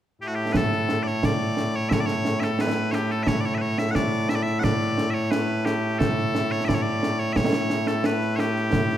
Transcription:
0.22 8.97 A2 medium
0.22 8.97 A3 medium
0.22 8.97 E4 medium
0.22 0.27 G4 medium
0.27 0.35 F#4 medium
0.35 0.53 G4 medium
0.53 0.57 B4 medium
0.53 concert bass drum medium
0.53 snare loud
0.57 1.03 A4 medium
0.72 snare soft
0.89 snare medium
1.03 1.07 D5 medium
1.03 snare soft
1.07 1.25 C#5 medium
1.23 1.76 D5 medium
1.23 concert bass drum medium
1.23 snare loud
1.57 snare medium
1.76 1.89 C#5 loud
1.89 2.00 C#5 loud
1.89 1.93 E5 loud
1.89 concert bass drum medium
1.89 snare medium
2.00 2.06 D5 medium
2.06 2.40 C#5 loud
2.06 snare medium
2.25 snare medium
2.40 2.61 A4 medium
2.40 2.44 E5 medium
2.40 snare medium
2.59 2.92 B4 medium
2.59 snare medium
2.76 snare soft
2.92 3.12 G4 medium
2.92 2.95 C#5 medium
2.92 snare medium
3.11 3.23 A4 medium
3.11 snare soft
3.23 3.28 E5 loud
3.23 concert bass drum medium
3.23 snare medium
3.28 3.41 C#5 loud
3.41 3.45 D5 medium
3.41 snare soft
3.45 3.55 C#5 medium
3.55 3.62 B4 medium
3.55 3.58 E5 medium
3.62 3.78 C#5 loud
3.78 3.91 E5 medium
3.78 snare medium
3.91 3.95 F#5 loud
3.95 4.29 D5 loud
3.95 concert bass drum medium
3.95 snare medium
4.12 snare soft
4.29 4.35 E5 loud
4.29 snare medium
4.35 4.43 D5 medium
4.43 4.59 E5 loud
4.43 snare soft
4.59 4.64 F#5 loud
4.64 5.10 D5 loud
4.64 concert bass drum medium
4.64 snare medium
4.81 snare soft
4.98 snare medium
5.10 5.31 C#5 medium
5.10 5.14 E5 medium
5.31 5.65 B4 medium
5.31 snare loud
5.65 5.99 G4 medium
5.65 snare medium
5.99 6.51 A4 loud
5.99 concert bass drum medium
5.99 snare medium
6.18 snare soft
6.35 snare medium
6.51 6.65 C#5 medium
6.51 snare soft
6.65 6.74 D5 medium
6.65 6.68 E5 medium
6.69 concert bass drum medium
6.69 snare loud
6.74 6.82 C#5 medium
6.82 7.19 D5 medium
7.03 snare medium
7.19 7.33 C#5 medium
7.33 7.87 C#5 loud
7.33 7.36 E5 loud
7.33 concert bass drum medium
7.33 snare loud
7.53 snare medium
7.70 snare medium
7.87 8.05 A4 medium
7.87 snare medium
8.04 8.36 B4 medium
8.04 snare loud
8.21 snare soft
8.36 8.97 G4 medium
8.36 8.40 C#5 medium
8.36 snare medium
8.56 snare soft
8.73 concert bass drum medium
8.73 snare loud
8.90 snare soft

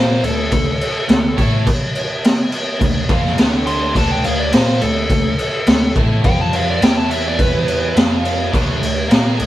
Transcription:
0.00 0.21 A#2 loud
0.00 0.22 A#3 loud
0.00 0.22 F4 loud
0.00 0.22 A#4 loud
0.00 0.23 C5 medium
0.23 0.50 D2 medium
0.23 0.46 D3 medium
0.23 0.46 A3 medium
0.23 1.35 A4 medium
0.23 crash medium
0.52 0.79 D2 medium
0.52 0.75 D3 medium
0.52 0.75 A3 medium
0.52 kick medium
0.52 crash medium
0.81 crash medium
1.09 1.36 D2 medium
1.09 1.32 D3 medium
1.09 1.32 A3 medium
1.09 snare loud
1.09 crash medium
1.37 1.65 A2 medium
1.37 1.65 A3 medium
1.37 1.65 E4 medium
1.37 1.66 A4 medium
1.37 kick medium
1.37 crash medium
1.67 kick loud
1.67 crash medium
1.95 crash medium
2.24 snare medium
2.24 crash medium
2.52 crash medium
2.79 3.08 D2 medium
2.79 3.03 D3 medium
2.79 3.03 A3 medium
2.79 kick medium
2.79 crash medium
3.09 3.36 F2 medium
3.09 3.37 F3 medium
3.09 3.37 C4 loud
3.09 3.38 F4 loud
3.09 kick loud
3.09 crash medium
3.25 snare soft
3.38 3.91 D2 medium
3.38 3.94 D3 medium
3.38 3.95 A3 loud
3.38 3.95 D4 medium
3.38 snare medium
3.38 crash medium
3.67 3.95 C6 loud
3.67 crash medium
3.95 4.23 D2 medium
3.95 4.23 D3 medium
3.95 4.23 A3 medium
3.95 4.24 D4 loud
3.95 4.10 A5 loud
3.95 kick medium
3.95 crash medium
4.11 4.25 G5 medium
4.24 4.51 D2 medium
4.24 4.47 D3 medium
4.24 4.48 A3 medium
4.24 4.39 F5 medium
4.24 crash medium
4.39 4.54 D5 medium
4.52 4.80 A#2 loud
4.52 4.80 A#3 loud
4.52 4.80 F4 medium
4.52 4.81 A#4 loud
4.52 4.81 C5 medium
4.52 snare loud
4.52 crash medium
4.81 5.08 D2 medium
4.81 5.04 D3 medium
4.81 5.05 A3 medium
4.81 5.92 A4 loud
4.81 crash medium
5.10 5.36 D2 medium
5.10 5.33 D3 medium
5.10 5.34 A3 medium
5.10 kick loud
5.10 crash medium
5.39 crash medium
5.67 5.94 D2 medium
5.67 5.90 D3 medium
5.67 5.90 A3 medium
5.67 snare loud
5.67 crash medium
5.96 6.22 A2 loud
5.96 6.25 A3 medium
5.96 6.25 E4 medium
5.96 6.24 A4 medium
5.96 kick loud
5.96 crash medium
6.24 6.78 F2 medium
6.24 6.80 F3 medium
6.24 6.81 C4 loud
6.24 6.81 F4 loud
6.24 6.39 G5 loud
6.24 kick loud
6.24 crash medium
6.41 6.54 A5 medium
6.53 6.68 F5 loud
6.53 crash medium
6.70 6.82 D5 loud
6.81 7.92 E2 loud
6.81 7.94 E3 loud
6.81 7.95 B3 loud
6.81 7.95 E4 loud
6.81 6.97 G5 loud
6.81 snare loud
6.81 crash medium
6.97 7.10 A5 medium
7.10 7.24 E5 medium
7.10 crash medium
7.28 7.40 D5 loud
7.39 7.95 B4 loud
7.39 kick loud
7.39 crash medium
7.68 crash medium
7.96 8.49 F2 medium
7.96 8.51 F3 medium
7.96 8.52 C4 medium
7.96 8.52 F4 loud
7.96 snare loud
7.96 crash medium
8.25 crash medium
8.52 8.80 D2 medium
8.52 8.78 D3 loud
8.52 8.78 A3 medium
8.52 8.80 D4 loud
8.52 kick loud
8.52 crash medium
8.79 9.08 D2 medium
8.79 9.03 D3 medium
8.79 9.03 A3 medium
8.79 crash medium
9.08 9.36 A#2 loud
9.08 9.36 A#3 loud
9.08 9.36 F4 loud
9.08 9.37 A#4 loud
9.08 snare loud
9.08 crash medium
9.37 9.46 D2 medium
9.37 9.46 D3 medium
9.37 9.46 A3 medium
9.37 crash medium

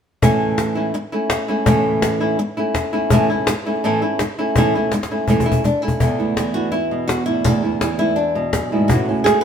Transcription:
0.22 0.94 A2 medium
0.22 0.94 E3 medium
0.22 0.77 A3 medium
0.22 0.76 C#4 medium
0.22 0.75 E4 medium
0.22 cajon bass loud
0.58 cajon slap medium
0.75 0.93 A3 soft
0.75 0.93 C#4 soft
0.75 0.93 E4 soft
0.94 muted nylon-string guitar stroke medium
0.94 cajon slap soft
1.12 1.48 A3 soft
1.12 1.48 C#4 soft
1.12 1.47 E4 medium
1.30 cajon slap medium
1.48 1.66 A3 soft
1.48 1.66 C#4 soft
1.48 1.66 E4 medium
1.66 2.38 A2 medium
1.66 2.39 E3 medium
1.66 2.21 A3 medium
1.66 2.21 C#4 medium
1.66 2.20 E4 medium
1.66 cajon bass loud
2.02 cajon slap loud
2.20 2.38 A3 soft
2.20 2.38 C#4 soft
2.20 2.38 E4 soft
2.20 cajon slap soft
2.39 muted nylon-string guitar stroke medium
2.57 2.93 A3 soft
2.57 2.92 C#4 soft
2.57 2.92 E4 medium
2.75 cajon bass medium
2.75 cajon slap medium
2.93 3.11 A3 soft
2.93 3.11 C#4 soft
2.93 3.10 E4 medium
3.10 3.29 A2 medium
3.10 3.29 E3 medium
3.10 3.29 A3 medium
3.10 3.29 C#4 medium
3.10 3.29 E4 medium
3.10 cajon bass loud
3.29 3.47 A3 soft
3.29 3.47 C#4 medium
3.29 3.47 E4 medium
3.29 cajon slap soft
3.47 muted nylon-string guitar stroke medium
3.47 cajon slap loud
3.66 3.84 A3 soft
3.66 3.83 C#4 soft
3.66 3.83 E4 medium
3.84 4.01 A2 medium
3.84 4.01 E3 medium
3.84 4.02 A3 medium
3.84 4.01 C#4 medium
3.84 4.01 E4 medium
4.02 4.19 A3 soft
4.02 4.19 C#4 medium
4.02 4.19 E4 medium
4.19 muted nylon-string guitar stroke medium
4.19 cajon slap medium
4.39 4.56 A3 soft
4.39 4.56 C#4 soft
4.39 4.56 E4 medium
4.56 4.74 A2 medium
4.56 4.74 E3 medium
4.56 4.74 A3 medium
4.56 4.74 C#4 medium
4.56 4.74 E4 medium
4.56 cajon bass medium
4.75 4.93 A3 soft
4.75 4.92 C#4 soft
4.75 4.92 E4 medium
4.92 muted nylon-string guitar stroke medium
4.92 cajon slap medium
5.03 cajon slap medium
5.11 5.28 A3 soft
5.11 5.28 C#4 soft
5.11 5.28 E4 soft
5.28 5.46 A2 medium
5.28 5.46 E3 medium
5.28 5.46 A3 medium
5.28 5.46 C#4 medium
5.28 5.44 E4 medium
5.28 cajon bass medium
5.40 cajon bass medium
5.46 5.64 A3 soft
5.46 5.64 C#4 soft
5.46 5.64 E4 medium
5.52 cajon bass medium
5.64 5.82 D4 medium
5.64 muted nylon-string guitar stroke medium
5.64 cajon bass medium
5.82 6.01 A3 soft
5.82 6.00 C#4 medium
5.82 5.99 E4 soft
5.88 cajon bass medium
6.00 6.18 E2 medium
6.00 7.44 E2 medium
6.00 6.18 A2 medium
6.00 6.18 D3 medium
6.00 6.37 E3 soft
6.00 6.18 A3 medium
6.00 8.38 A3 soft
6.00 6.18 B3 medium
6.00 6.19 B3 soft
6.00 6.54 E4 medium
6.00 6.18 E4 medium
6.00 cajon bass medium
6.19 6.36 D3 soft
6.19 6.36 A3 soft
6.19 6.36 B3 soft
6.19 7.44 B3 soft
6.19 6.36 E4 soft
6.19 cajon slap soft
6.37 6.54 D3 soft
6.37 7.47 E3 soft
6.37 6.54 A3 soft
6.37 6.54 B3 soft
6.37 6.54 E4 soft
6.37 cajon slap medium
6.54 6.72 D3 soft
6.54 6.73 A3 soft
6.54 6.73 B3 soft
6.54 6.72 E4 soft
6.54 6.71 F#4 medium
6.72 7.07 E4 medium
6.72 muted nylon-string guitar stroke soft
6.91 7.43 B2 medium
7.08 7.25 F#4 medium
7.08 cajon slap medium
7.26 7.45 D3 soft
7.26 7.45 A3 soft
7.26 7.45 B3 soft
7.26 7.61 E4 medium
7.26 7.45 E4 soft
7.44 7.63 E2 medium
7.44 8.54 E2 medium
7.44 7.63 A2 medium
7.44 7.63 D3 medium
7.44 7.63 A3 medium
7.44 7.62 B3 medium
7.44 7.99 D4 medium
7.44 7.62 E4 medium
7.44 cajon bass medium
7.63 7.80 D3 soft
7.63 7.81 A3 soft
7.63 7.81 B3 soft
7.63 7.98 E4 medium
7.63 7.81 E4 soft
7.63 cajon slap soft
7.81 7.99 D3 soft
7.81 8.91 E3 medium
7.81 7.99 A3 soft
7.81 7.99 B3 soft
7.81 7.98 E4 soft
7.81 cajon slap medium
7.99 8.17 D3 soft
7.99 8.17 A3 soft
7.99 8.17 B3 soft
7.99 8.54 E4 medium
7.99 8.17 E4 soft
8.16 8.88 D4 medium
8.16 muted nylon-string guitar stroke soft
8.16 cajon slap soft
8.35 8.88 B2 medium
8.53 8.72 F#2 medium
8.53 cajon bass medium
8.53 cajon slap medium
8.72 8.90 G#2 medium
8.72 8.90 D3 soft
8.72 8.90 A3 soft
8.72 8.90 B3 soft
8.72 8.89 E4 soft
8.88 9.44 A2 medium
8.88 9.07 A2 medium
8.88 9.08 E3 medium
8.88 9.08 A3 medium
8.88 9.08 C#4 medium
8.88 9.07 E4 medium
8.88 9.44 F#4 medium
8.88 cajon bass medium
9.08 9.26 A3 soft
9.08 9.44 C#4 soft
9.08 9.26 C#4 soft
9.08 9.26 E4 soft
9.24 9.44 A3 medium
9.24 9.41 G#4 medium
9.24 muted nylon-string guitar stroke soft
9.24 cajon slap medium
9.41 9.44 B4 loud

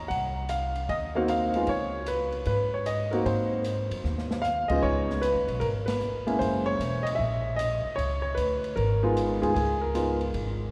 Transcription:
0.08 0.85 C2 medium
0.08 0.46 F#5 medium
0.08 kick soft
0.08 ride medium
0.49 0.91 F5 medium
0.49 hi-hat pedal soft
0.49 ride medium
0.75 ride soft
0.89 1.64 D#2 medium
0.89 0.95 D#5 medium
0.89 kick soft
0.89 ride soft
1.15 1.52 A#3 medium
1.15 1.53 C4 medium
1.15 1.53 D#4 medium
1.15 1.53 F#4 medium
1.15 1.21 F5 medium
1.28 1.70 F5 medium
1.28 hi-hat pedal soft
1.28 ride medium
1.54 1.67 G#3 medium
1.54 1.68 B3 medium
1.54 1.68 D#4 medium
1.54 1.68 F4 medium
1.54 ride soft
1.67 2.43 C#2 medium
1.67 2.05 C#5 medium
1.67 kick soft
1.67 ride medium
2.06 2.44 B4 medium
2.06 hi-hat pedal soft
2.06 ride medium
2.32 ride soft
2.45 3.22 G#2 medium
2.45 2.74 B4 medium
2.45 kick soft
2.45 ride medium
2.74 2.87 C#5 medium
2.86 3.11 D#5 medium
2.86 hi-hat pedal soft
2.86 ride medium
3.11 3.63 A#3 medium
3.11 3.63 C4 medium
3.11 3.63 D#4 medium
3.11 3.63 F#4 medium
3.11 3.26 A#4 medium
3.11 ride soft
3.25 3.87 G#2 medium
3.25 4.40 C5 medium
3.25 kick soft
3.25 ride medium
3.64 hi-hat pedal soft
3.64 ride medium
3.91 4.04 F#2 medium
3.91 ride medium
4.04 4.66 D#2 medium
4.04 snare soft
4.18 snare soft
4.31 snare medium
4.42 4.67 F5 loud
4.42 snare soft
4.42 hi-hat pedal medium
4.68 5.20 C#3 medium
4.68 5.20 G#3 medium
4.68 5.20 B3 medium
4.68 5.20 D#4 medium
4.68 5.20 F4 medium
4.68 4.83 D#5 medium
4.68 muted upright bass stroke soft
4.68 kick medium
4.68 crash medium
4.83 5.32 C#2 medium
4.83 5.23 C#5 loud
4.83 kick soft
5.10 snare medium
5.21 5.63 B4 medium
5.21 hi-hat pedal medium
5.21 ride medium
5.34 5.47 D#2 medium
5.48 5.61 B1 medium
5.48 ride soft
5.60 6.36 G#1 medium
5.60 5.66 A#4 medium
5.60 kick soft
5.60 ride medium
5.86 6.36 B4 medium
5.86 snare medium
5.86 ride medium
6.00 hi-hat pedal medium
6.27 6.77 G#3 medium
6.27 6.77 A#3 medium
6.27 6.77 C#4 medium
6.27 6.77 E4 medium
6.27 ride soft
6.39 6.77 F#1 medium
6.39 6.67 C5 medium
6.39 kick soft
6.39 ride medium
6.66 7.07 C#5 loud
6.79 7.16 E1 medium
6.79 hi-hat pedal medium
6.79 ride medium
7.03 7.08 D#5 medium
7.03 ride medium
7.15 7.81 A#1 medium
7.15 7.54 E5 medium
7.15 kick soft
7.56 7.98 D#5 medium
7.56 hi-hat pedal medium
7.56 ride medium
7.85 muted upright bass stroke soft
7.96 8.35 C#2 medium
7.96 8.21 C#5 medium
7.96 kick soft
7.96 ride medium
8.22 8.35 C#5 medium
8.35 8.74 D2 medium
8.35 8.73 B4 medium
8.35 hi-hat pedal medium
8.35 ride medium
8.64 ride soft
8.76 9.38 G#1 medium
8.76 9.13 A#4 medium
8.76 kick soft
8.76 ride medium
9.03 9.40 G#3 medium
9.03 9.40 B3 medium
9.03 9.40 D#4 medium
9.03 9.40 F4 medium
9.17 hi-hat pedal medium
9.17 ride medium
9.42 9.54 D2 medium
9.42 9.54 G#3 medium
9.42 9.54 B3 medium
9.42 9.54 D#4 medium
9.42 9.54 F4 medium
9.42 9.53 G#4 medium
9.42 ride soft
9.54 10.30 C#2 medium
9.54 9.79 G#4 medium
9.54 kick soft
9.54 ride medium
9.81 10.30 A#4 medium
9.95 10.18 G#3 medium
9.95 10.19 B3 medium
9.95 10.19 D#4 medium
9.95 10.19 F4 medium
9.95 hi-hat pedal medium
9.95 ride medium
10.21 ride soft
10.34 10.71 G#1 medium
10.34 kick soft
10.34 ride medium

